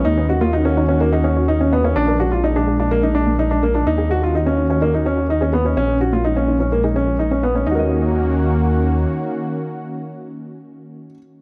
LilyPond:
<<
  \new Staff \with { instrumentName = "Synth arpeggio sound" } { \time 4/4 \key ees \minor \tempo 4 = 126 r16 des'16 ees'16 bes16 ees'16 bes'16 ees'16 ges'16 ees'16 aes'16 aes'16 ges'16 r16 des'16 ees'16 bes16 | d'16 bes'16 d'16 f'16 d'16 aes'16 aes'16 f'16 r16 d'16 d'16 bes16 d'16 bes'16 d'16 f'16 | ees'16 aes'16 aes'16 ges'16 r16 des'16 ees'16 bes16 ees'16 bes'16 ees'16 ges'16 ees'16 aes'16 aes'16 ges'16 | r16 des'16 ees'16 bes16 ees'16 bes'16 ees'16 f'16 ees'16 aes'16 aes'16 f'16 r16 des'16 ees'16 bes16 |
ees'8 r2. r8 | r1 | }
  \new Staff \with { instrumentName = "Upright piano" } { \time 4/4 \key ees \minor ees'8 ges'16 f'16 ees'16 des'8 des'16 bes16 ees'16 des'8 ees'16 des'16 ces'16 des'16 | d'8 ges'16 f'16 ees'16 d'8 d'16 bes16 ees'16 d'8 ees'16 d'16 bes16 d'16 | ees'8 ges'16 f'16 ees'16 des'8 des'16 bes16 ees'16 des'8 ees'16 des'16 ces'16 des'16 | des'8 ges'16 f'16 ees'16 des'8 des'16 bes16 ees'16 des'8 ees'16 des'16 ces'16 des'16 |
<ees' ges' bes' ees''>1~ | <ees' ges' bes' ees''>1 | }
  \new Staff \with { instrumentName = "Analog synth pad" } { \time 4/4 \key ees \minor << { <ees bes ges'>1 | <aes d'>1 | <ees bes ges'>1 | aes1 |
<ees bes des' ges'>1~ | <ees bes des' ges'>1 | } \\ { des'1 | r1 | des'1~ | des'1 |
r1 | r1 | } >> }
  \new Staff \with { instrumentName = "Detuned saw bass" } { \clef bass \time 4/4 \key ees \minor ees,1 | bes,,1 | ees,1 | bes,,1 |
ees,2. r4 | r1 | }
>>